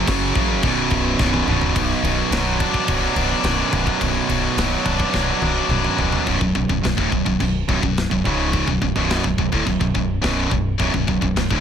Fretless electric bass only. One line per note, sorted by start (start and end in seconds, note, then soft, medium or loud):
0.07 0.35 F#1 loud
0.36 0.63 A1 medium
0.63 0.91 B0 loud
0.92 1.18 B0 medium
1.19 1.46 B0 loud
1.47 1.74 B0 medium
1.76 1.93 B0 medium
2.03 2.20 B0 medium
2.30 2.65 B0 medium
2.88 3.05 B0 medium
3.15 3.33 B0 medium
3.43 3.61 B0 medium
3.73 3.90 B0 medium
4.01 4.18 B0 loud
4.29 4.46 B0 medium
4.57 4.74 B0 medium
4.86 5.03 B0 medium
5.14 5.31 B0 medium
5.41 5.58 B0 medium
5.68 5.86 B0 medium
5.98 6.15 B0 medium
6.27 6.40 B0 medium
6.41 6.54 B0 medium
6.55 6.68 B0 medium
6.70 6.83 B0 medium
6.84 6.97 B0 medium
6.98 7.11 D1 medium
7.12 7.25 B0 medium
7.26 7.39 B0 medium
7.40 7.66 B0 medium
7.68 7.81 B0 medium
7.83 8.09 B0 medium
8.11 8.24 B0 medium
8.25 8.65 C#1 medium
8.68 8.81 B0 medium
8.82 8.95 B0 medium
8.96 9.22 B0 loud
9.24 9.37 B0 medium
9.39 9.52 B0 medium
9.52 9.66 D1 medium
9.66 9.80 B0 medium
9.81 9.94 B0 medium
9.95 10.21 B0 medium
10.23 10.50 B0 medium
10.51 10.78 B0 medium
10.79 10.93 B0 loud
10.94 11.07 B0 medium
11.08 11.21 B0 medium
11.22 11.34 B0 medium
11.35 11.49 B0 medium
11.51 11.60 D1 loud